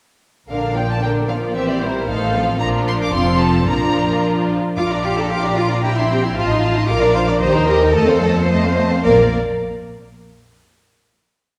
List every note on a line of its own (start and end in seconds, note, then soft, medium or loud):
0.49 2.05 A#1 soft
0.49 2.05 A#2 soft
0.49 0.75 D3 soft
0.49 0.74 D4 soft
0.49 0.75 D4 soft
0.49 0.74 A#4 soft
0.49 0.75 F5 soft
0.76 1.03 F3 soft
0.76 1.03 A#3 soft
0.76 1.03 F4 soft
0.76 1.03 D5 soft
0.76 0.90 G5 soft
0.90 1.03 A5 soft
1.02 1.29 D3 soft
1.02 1.29 D4 soft
1.02 1.30 D4 soft
1.02 1.30 A#4 soft
1.02 1.10 G5 soft
1.28 1.56 F3 soft
1.28 1.56 A#3 soft
1.28 1.56 F4 soft
1.28 1.56 D5 soft
1.28 1.36 F5 soft
1.55 1.81 E3 soft
1.55 1.81 C4 soft
1.55 1.80 G4 soft
1.55 1.80 C5 soft
1.55 1.68 E5 soft
1.69 1.82 D5 soft
1.81 2.09 G3 soft
1.81 2.09 A#3 soft
1.81 2.09 E4 soft
1.81 2.09 A#4 soft
1.81 2.08 C5 soft
2.07 2.61 A1 soft
2.07 2.60 A2 soft
2.07 2.33 D#3 soft
2.07 2.33 D#4 soft
2.07 2.33 A4 soft
2.07 2.33 C5 soft
2.07 2.60 F5 soft
2.35 2.60 F3 soft
2.35 2.61 C4 soft
2.35 2.59 F4 soft
2.35 2.61 A4 soft
2.60 3.10 A#1 soft
2.60 3.10 A#2 soft
2.60 3.11 F3 soft
2.60 3.11 D4 soft
2.60 3.10 F4 soft
2.60 3.10 A#4 soft
2.60 2.68 A#5 medium
2.88 2.93 C6 medium
3.02 3.15 D6 medium
3.13 3.67 F1 soft
3.13 3.67 F2 soft
3.13 3.67 F3 soft
3.13 3.68 C4 soft
3.13 3.67 F4 soft
3.13 3.68 A4 soft
3.13 3.40 C6 medium
3.40 3.68 A5 medium
3.67 4.57 A#1 soft
3.67 4.57 A#2 soft
3.67 4.56 F3 soft
3.67 4.56 D4 soft
3.67 4.56 F4 soft
3.67 4.57 A#4 soft
3.67 4.22 A#5 medium
4.77 6.32 A#1 medium
4.77 4.85 F4 medium
4.77 4.90 F4 soft
4.77 4.91 F5 soft
4.77 4.90 D6 soft
4.90 5.05 D4 soft
4.90 5.05 D5 soft
4.90 5.04 A#5 soft
5.04 5.18 F4 soft
5.04 5.18 G4 medium
5.04 5.17 F5 soft
5.04 5.18 D6 soft
5.17 5.31 D4 soft
5.17 5.31 A4 medium
5.17 5.31 D5 soft
5.17 5.32 A#5 soft
5.29 5.44 F4 soft
5.29 5.57 G4 medium
5.29 5.42 F5 soft
5.29 5.44 D6 soft
5.43 5.58 D4 soft
5.43 5.57 D5 soft
5.43 5.58 A#5 soft
5.56 5.84 F4 medium
5.56 5.71 F4 soft
5.56 5.70 F5 soft
5.56 5.71 D6 soft
5.69 5.84 D4 soft
5.69 5.83 D5 soft
5.69 5.81 A#5 soft
5.82 5.89 E4 medium
5.82 5.97 G4 soft
5.82 5.95 G5 soft
5.82 5.95 A#5 soft
5.96 6.03 D4 medium
5.96 6.10 E4 soft
5.96 6.10 E5 soft
5.96 6.10 C6 soft
6.09 6.36 C4 medium
6.09 6.23 G4 soft
6.09 6.23 G5 soft
6.09 6.23 A#5 soft
6.23 6.36 E4 soft
6.23 6.36 E5 soft
6.23 6.36 C6 soft
6.36 6.89 A1 medium
6.36 6.89 F4 medium
6.36 6.49 F4 soft
6.36 6.48 F5 soft
6.36 6.48 A5 soft
6.48 6.63 D#4 soft
6.48 6.62 D#5 soft
6.48 6.62 C6 soft
6.60 6.74 F5 soft
6.60 6.76 A5 soft
6.64 6.76 F4 soft
6.74 6.89 D#4 soft
6.74 6.88 D#5 soft
6.74 6.89 C6 soft
6.87 7.40 A#1 medium
6.87 7.01 F4 soft
6.87 7.15 A#4 medium
6.87 7.01 F5 medium
6.87 7.00 D6 medium
7.01 7.15 D4 soft
7.01 7.15 D5 soft
7.01 7.15 A#5 soft
7.15 7.28 F4 soft
7.15 7.20 C5 medium
7.15 7.28 F5 medium
7.15 7.28 D6 soft
7.28 7.41 D4 soft
7.28 7.41 D5 soft
7.28 7.34 D5 medium
7.28 7.40 A#5 soft
7.40 7.94 D#2 medium
7.40 7.54 G4 soft
7.40 7.67 C5 medium
7.40 7.53 D#5 soft
7.40 7.53 A#5 soft
7.54 7.68 D#4 medium
7.54 7.67 A#4 soft
7.54 7.68 G5 soft
7.67 7.81 G4 soft
7.67 7.94 A#4 medium
7.67 7.81 D#5 medium
7.67 7.81 A#5 soft
7.81 7.95 D#4 soft
7.81 7.95 A#4 soft
7.81 7.95 G5 soft
7.94 8.84 F2 medium
7.94 8.07 A3 medium
7.94 8.49 A4 medium
7.94 8.07 D#5 medium
7.94 8.07 A5 medium
8.08 8.22 C4 soft
8.08 8.22 C5 soft
8.08 8.22 F5 soft
8.23 8.36 A3 soft
8.23 8.36 D#5 soft
8.23 8.36 A5 soft
8.36 8.50 C4 soft
8.36 8.49 C5 soft
8.36 8.50 F5 soft
8.49 8.63 A3 soft
8.49 9.04 C5 medium
8.49 8.62 D#5 soft
8.49 8.63 A5 soft
8.63 8.77 C4 soft
8.63 8.77 C5 soft
8.63 8.78 F5 soft
8.76 8.92 A3 soft
8.76 8.90 D#5 soft
8.76 8.92 A5 soft
8.90 9.05 C4 soft
8.90 9.04 C5 soft
8.90 9.04 F5 soft
9.04 9.35 A#1 medium
9.04 9.35 A#3 medium
9.04 9.35 A#4 medium
9.04 9.35 D5 medium
9.04 9.35 F5 soft